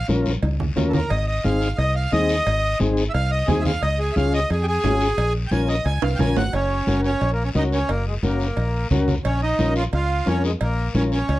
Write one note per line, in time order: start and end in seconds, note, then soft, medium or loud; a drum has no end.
0.08 0.36 A#1 medium
0.08 0.32 C#4 medium
0.08 0.33 F4 medium
0.08 0.33 A#4 medium
0.08 high conga medium
0.08 short guiro medium
0.26 high conga medium
0.26 short guiro medium
0.43 0.70 C#2 loud
0.43 cowbell medium
0.43 high conga medium
0.43 long guiro medium
0.60 low conga medium
0.76 1.04 D#2 loud
0.76 1.00 C#4 medium
0.76 1.00 F4 medium
0.76 1.01 A#4 medium
0.76 low conga medium
0.76 low timbale medium
0.76 short guiro medium
0.90 0.92 A4 medium
0.90 low conga loud
0.90 short guiro medium
0.94 1.10 A#4 medium
1.10 1.38 G#1 medium
1.10 1.26 D#5 medium
1.10 cowbell loud
1.10 high conga soft
1.10 long guiro medium
1.27 1.44 D#5 medium
1.44 1.72 G#1 medium
1.44 1.68 C4 medium
1.44 1.69 D#4 medium
1.44 1.69 G#4 medium
1.44 1.77 F5 medium
1.44 high conga medium
1.44 short guiro medium
1.61 short guiro medium
1.78 2.06 C2 medium
1.78 1.95 D#5 loud
1.78 cowbell medium
1.78 high conga soft
1.78 long guiro medium
1.95 2.12 F5 medium
2.12 2.40 D#2 loud
2.12 2.36 C4 medium
2.12 2.36 D#4 medium
2.12 2.36 G#4 medium
2.12 2.78 D#5 loud
2.12 high conga medium
2.12 short guiro medium
2.29 short guiro medium
2.46 2.74 G#1 medium
2.46 cowbell medium
2.46 high conga soft
2.80 3.08 G#1 medium
2.80 3.04 C4 medium
2.80 3.04 D#4 medium
2.80 3.04 G#4 medium
2.80 high conga medium
2.80 short guiro medium
2.97 short guiro medium
3.10 3.12 E5 medium
3.14 3.42 C2 loud
3.14 3.31 F5 loud
3.14 cowbell medium
3.14 high conga soft
3.14 long guiro medium
3.31 3.48 D#5 medium
3.48 3.75 D#2 loud
3.48 3.72 C4 medium
3.48 3.72 D#4 medium
3.48 3.65 G#4 medium
3.48 3.72 G#4 medium
3.48 high conga medium
3.48 low conga medium
3.48 low timbale medium
3.48 short guiro medium
3.61 3.63 E5 medium
3.65 3.82 F5 medium
3.65 low conga medium
3.65 short guiro medium
3.82 4.09 C#2 medium
3.82 3.99 D#5 loud
3.82 cowbell loud
3.82 high conga soft
3.82 long guiro medium
3.99 4.16 G#4 medium
4.13 4.40 C#4 medium
4.13 4.40 F4 medium
4.13 4.15 E5 medium
4.13 high conga medium
4.13 short guiro medium
4.17 4.44 C#2 medium
4.17 4.40 G#4 medium
4.17 4.33 F5 medium
4.33 4.50 D#5 loud
4.33 short guiro medium
4.50 4.77 F2 loud
4.50 4.66 G#4 medium
4.50 cowbell medium
4.50 high conga soft
4.50 long guiro medium
4.63 4.66 G4 medium
4.68 5.33 G#4 loud
4.84 5.11 G#1 loud
4.84 5.07 C#4 medium
4.84 5.08 F4 medium
4.84 5.08 G#4 medium
4.84 high conga medium
4.84 low timbale medium
4.84 short guiro medium
5.01 short guiro medium
5.18 5.45 A#1 loud
5.18 cowbell loud
5.18 high conga soft
5.18 long guiro medium
5.47 5.50 G5 medium
5.47 high conga medium
5.52 5.79 A#1 medium
5.52 5.75 C#4 medium
5.52 5.76 F4 medium
5.52 5.76 A#4 medium
5.52 5.68 G#5 loud
5.52 short guiro medium
5.69 5.85 D#5 medium
5.69 short guiro medium
5.85 5.99 C#2 loud
5.85 6.02 G#5 medium
5.85 cowbell medium
5.85 high conga soft
5.85 long guiro medium
6.02 6.18 C2 medium
6.02 6.19 F5 medium
6.02 high timbale loud
6.16 6.35 A#1 medium
6.16 6.43 C#4 medium
6.16 6.43 F4 medium
6.16 6.18 G5 medium
6.16 high conga medium
6.16 low conga medium
6.16 high timbale medium
6.16 short guiro medium
6.20 6.44 A#4 medium
6.20 6.36 G#5 medium
6.36 6.52 G#1 medium
6.36 6.53 F#5 loud
6.36 low timbale loud
6.36 short guiro medium
6.53 6.81 F#1 medium
6.53 7.01 C#4 medium
6.53 cowbell loud
6.53 high conga soft
6.53 long guiro medium
6.87 7.14 F#1 medium
6.87 7.11 C#4 medium
6.87 7.11 F#4 medium
6.87 7.11 A#4 medium
6.87 high conga medium
6.87 short guiro medium
7.04 7.31 C#4 loud
7.04 short guiro medium
7.21 7.49 A#1 loud
7.21 cowbell medium
7.21 high conga soft
7.21 long guiro medium
7.33 7.43 A#3 medium
7.44 7.49 C#4 medium
7.55 7.82 C#2 loud
7.55 7.79 C#4 medium
7.55 7.64 D#4 loud
7.55 7.79 F#4 medium
7.55 7.79 A#4 medium
7.55 high conga medium
7.55 short guiro medium
7.72 7.90 C#4 medium
7.72 short guiro medium
7.89 8.16 F#1 medium
7.89 8.05 A#3 loud
7.89 cowbell medium
7.89 high conga soft
7.89 long guiro medium
8.07 8.14 G#3 medium
8.23 8.50 F#1 medium
8.23 8.88 A#3 medium
8.23 8.47 C#4 medium
8.23 8.47 F#4 medium
8.23 8.47 A#4 medium
8.23 high conga medium
8.23 short guiro medium
8.40 short guiro medium
8.57 8.84 A#1 medium
8.57 cowbell medium
8.57 high conga soft
8.57 long guiro medium
8.91 9.18 C#2 loud
8.91 9.15 C#4 medium
8.91 9.15 F#4 medium
8.91 9.15 A#4 loud
8.91 high conga medium
8.91 low conga medium
8.91 short guiro medium
9.08 low conga medium
9.08 short guiro medium
9.25 9.52 A#1 medium
9.25 9.41 C#4 loud
9.25 cowbell loud
9.25 high conga soft
9.25 long guiro medium
9.43 9.74 D#4 loud
9.59 9.86 A#1 medium
9.59 9.83 C#4 medium
9.59 9.83 F4 medium
9.59 9.83 A#4 medium
9.59 high conga medium
9.59 short guiro medium
9.76 9.84 F4 loud
9.76 short guiro medium
9.93 10.20 C#2 loud
9.93 10.29 F4 loud
9.93 cowbell medium
9.93 high conga soft
9.93 long guiro medium
10.26 10.54 F2 loud
10.26 10.50 C#4 medium
10.26 10.43 C#4 medium
10.26 10.50 F4 medium
10.26 10.51 A#4 medium
10.26 high conga medium
10.26 short guiro medium
10.44 10.52 G#3 medium
10.44 short guiro medium
10.61 10.88 A#1 medium
10.61 10.93 A#3 medium
10.61 cowbell medium
10.61 high conga soft
10.61 long guiro medium
10.94 11.22 A#1 medium
10.94 11.18 C#4 medium
10.94 11.03 C#4 medium
10.94 11.19 F4 medium
10.94 11.19 A#4 medium
10.94 high conga medium
10.94 short guiro medium
11.12 11.39 C#4 medium
11.12 short guiro medium
11.29 11.39 C#2 loud
11.29 cowbell medium
11.29 high conga soft
11.29 long guiro medium